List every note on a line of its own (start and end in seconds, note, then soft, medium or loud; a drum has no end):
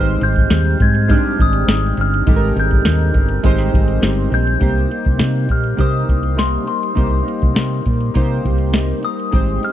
0.00 0.15 G#1 loud
0.00 0.20 G#2 medium
0.00 0.21 G3 medium
0.00 0.80 G#3 medium
0.00 0.21 C4 medium
0.00 0.19 D#4 medium
0.00 0.81 D#4 medium
0.00 0.81 G4 medium
0.00 0.85 C5 medium
0.00 0.23 F6 medium
0.21 0.45 G#1 loud
0.21 0.49 G3 soft
0.21 0.49 C4 medium
0.21 0.50 D#4 medium
0.21 0.77 G6 loud
0.21 closed hi-hat medium
0.36 kick medium
0.36 closed hi-hat soft
0.49 0.74 D#2 loud
0.49 0.79 G#2 medium
0.49 0.80 G3 medium
0.49 0.78 C4 medium
0.49 0.77 D#4 medium
0.49 snare loud
0.49 closed hi-hat medium
0.78 1.15 G#2 medium
0.78 1.07 G3 soft
0.78 1.08 C4 medium
0.78 1.08 D#4 medium
0.78 1.11 G#6 loud
0.78 kick loud
0.78 closed hi-hat medium
0.95 closed hi-hat medium
1.08 1.38 G#2 medium
1.08 1.38 G3 medium
1.08 1.97 G#3 medium
1.08 1.37 C4 medium
1.08 1.99 D4 medium
1.08 1.98 D#4 medium
1.08 1.36 D#4 medium
1.08 1.98 G4 medium
1.08 1.40 F6 loud
1.08 kick medium
1.08 closed hi-hat loud
1.37 1.62 G#1 loud
1.37 1.66 G3 soft
1.37 1.67 C4 medium
1.37 1.67 D#4 medium
1.37 kick medium
1.37 closed hi-hat medium
1.42 1.95 D#6 medium
1.53 closed hi-hat medium
1.66 1.91 G#1 medium
1.66 1.96 G#2 medium
1.66 1.97 G3 medium
1.66 1.97 C4 medium
1.66 1.96 D#4 medium
1.66 snare loud
1.66 closed hi-hat loud
1.97 2.21 G1 medium
1.97 2.25 G3 soft
1.97 2.26 C4 medium
1.97 2.27 D#4 medium
1.97 2.54 F6 loud
1.97 closed hi-hat medium
2.14 closed hi-hat medium
2.26 2.50 G#1 loud
2.26 2.56 G#2 medium
2.26 2.56 G3 medium
2.26 3.16 G#3 medium
2.26 2.55 C4 medium
2.26 3.16 D#4 medium
2.26 2.54 D#4 medium
2.26 3.16 G4 medium
2.26 2.34 A4 medium
2.26 kick loud
2.26 closed hi-hat loud
2.36 3.20 A#4 medium
2.55 2.79 G#1 loud
2.55 2.85 G3 soft
2.55 2.85 C4 medium
2.55 2.85 D#4 medium
2.55 closed hi-hat medium
2.60 3.42 G6 medium
2.71 kick medium
2.71 closed hi-hat soft
2.85 3.09 D#2 medium
2.85 3.15 G#2 medium
2.85 3.14 G3 medium
2.85 3.13 C4 medium
2.85 3.12 D#4 medium
2.85 snare loud
2.85 closed hi-hat medium
3.01 closed hi-hat soft
3.13 3.38 G1 medium
3.13 3.43 G3 soft
3.13 3.43 C4 soft
3.13 3.43 D#4 medium
3.13 kick medium
3.13 closed hi-hat medium
3.29 closed hi-hat medium
3.43 3.67 G#1 loud
3.43 3.73 G#2 medium
3.43 3.74 G3 medium
3.43 4.33 G#3 medium
3.43 3.73 C4 medium
3.43 4.33 D#4 medium
3.43 3.71 D#4 medium
3.43 4.34 G4 medium
3.43 4.34 C5 medium
3.43 kick medium
3.43 closed hi-hat loud
3.57 snare soft
3.57 closed hi-hat soft
3.72 3.97 G#1 medium
3.72 4.00 G3 soft
3.72 4.01 C4 medium
3.72 4.02 D#4 medium
3.72 kick medium
3.72 closed hi-hat medium
3.88 closed hi-hat medium
4.01 4.26 G1 medium
4.01 4.31 G#2 medium
4.01 4.31 G3 medium
4.01 4.31 C4 medium
4.01 4.29 D#4 medium
4.01 snare loud
4.01 closed hi-hat loud
4.17 closed hi-hat soft
4.30 4.56 A#1 medium
4.30 4.59 G3 soft
4.30 4.60 C4 medium
4.30 4.59 D#4 medium
4.30 open hi-hat medium
4.34 5.54 G6 loud
4.47 closed hi-hat medium
4.59 4.85 C2 loud
4.59 4.90 C3 medium
4.59 4.89 G3 medium
4.59 5.50 A#3 medium
4.59 4.88 A#3 medium
4.59 4.87 D#4 medium
4.59 5.51 D#4 medium
4.59 5.51 G4 medium
4.59 5.51 C5 medium
4.59 kick medium
4.59 closed hi-hat medium
4.89 5.17 G3 soft
4.89 5.17 A#3 soft
4.89 5.18 D#4 medium
4.89 closed hi-hat medium
5.05 5.18 C2 medium
5.05 kick medium
5.05 closed hi-hat soft
5.17 5.48 C3 medium
5.17 5.49 C3 medium
5.17 5.48 G3 medium
5.17 5.48 A#3 medium
5.17 5.46 D#4 medium
5.17 snare loud
5.17 closed hi-hat medium
5.48 5.73 A#2 medium
5.48 5.76 G3 soft
5.48 5.77 A#3 soft
5.48 5.77 D#4 medium
5.48 5.81 F6 medium
5.48 kick medium
5.48 closed hi-hat medium
5.64 closed hi-hat soft
5.76 6.07 C3 medium
5.76 6.02 C3 loud
5.76 6.07 G3 medium
5.76 6.67 A#3 medium
5.76 6.05 A#3 medium
5.76 6.68 D#4 medium
5.76 6.05 D#4 medium
5.76 6.68 G4 medium
5.76 6.69 C5 medium
5.76 kick medium
5.76 closed hi-hat loud
5.81 6.41 D#6 medium
6.06 6.56 C2 medium
6.06 6.36 G3 soft
6.06 6.36 A#3 soft
6.06 6.37 D#4 soft
6.06 kick medium
6.06 closed hi-hat medium
6.23 closed hi-hat soft
6.37 6.67 C3 medium
6.37 6.67 G3 medium
6.37 6.66 A#3 medium
6.37 6.65 D#4 medium
6.37 6.67 C6 medium
6.37 snare loud
6.37 closed hi-hat loud
6.66 6.94 G3 soft
6.66 6.94 A#3 soft
6.66 6.95 D#4 soft
6.66 7.23 C6 medium
6.66 closed hi-hat medium
6.83 closed hi-hat soft
6.95 7.21 C2 medium
6.95 7.25 C3 medium
6.95 7.24 G3 medium
6.95 7.85 A#3 medium
6.95 7.23 A#3 medium
6.95 7.85 D#4 medium
6.95 7.22 D#4 medium
6.95 7.86 G4 medium
6.95 7.87 C5 medium
6.95 kick medium
6.95 closed hi-hat medium
7.23 7.54 G3 soft
7.23 7.54 A#3 soft
7.23 7.54 D#4 medium
7.28 closed hi-hat medium
7.42 7.54 C2 medium
7.42 kick medium
7.42 closed hi-hat soft
7.54 7.84 C3 medium
7.54 7.79 C3 loud
7.54 7.84 G3 medium
7.54 7.84 A#3 medium
7.54 7.82 D#4 medium
7.54 snare loud
7.54 closed hi-hat medium
7.83 8.09 A#2 medium
7.83 8.14 G3 soft
7.83 8.14 A#3 soft
7.83 8.14 D#4 medium
7.83 kick medium
7.83 closed hi-hat medium
8.00 closed hi-hat soft
8.14 8.44 C3 medium
8.14 8.38 C3 medium
8.14 8.44 G3 medium
8.14 9.04 A#3 medium
8.14 8.43 A#3 medium
8.14 9.04 D#4 medium
8.14 8.42 D#4 medium
8.14 9.04 G4 medium
8.14 9.05 C5 medium
8.14 kick medium
8.14 closed hi-hat medium
8.44 8.91 C2 medium
8.44 8.71 G3 soft
8.44 8.72 A#3 medium
8.44 8.73 D#4 medium
8.44 kick medium
8.44 closed hi-hat medium
8.58 closed hi-hat soft
8.72 9.02 C3 medium
8.72 9.03 G3 medium
8.72 9.02 A#3 medium
8.72 9.01 D#4 medium
8.72 snare loud
8.72 closed hi-hat medium
9.02 9.32 G3 soft
9.02 9.33 A#3 soft
9.02 9.32 D#4 medium
9.02 9.64 D#6 medium
9.02 closed hi-hat medium
9.19 closed hi-hat medium
9.31 9.57 G#1 medium
9.31 9.62 G#2 medium
9.31 9.62 G3 medium
9.31 9.72 G#3 medium
9.31 9.62 C4 medium
9.31 9.72 D#4 medium
9.31 9.61 D#4 medium
9.31 9.72 G4 medium
9.31 9.72 C5 medium
9.31 kick loud
9.31 closed hi-hat medium
9.62 9.72 G3 soft
9.62 9.72 C4 soft
9.62 9.72 D#4 medium
9.62 9.72 F6 loud
9.62 closed hi-hat medium